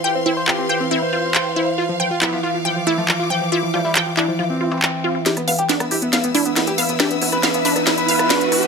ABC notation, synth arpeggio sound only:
X:1
M:4/4
L:1/16
Q:1/4=138
K:Ephr
V:1 name="Synth arpeggio sound"
g z E z F z g z E z F z g z E z | F z g z E z F z g z E z F z g z | E z F z g z E z F z F z f z F F | E z f z D z E z f z D z E z f z |
D z E z f z D z E z f z D z E z |]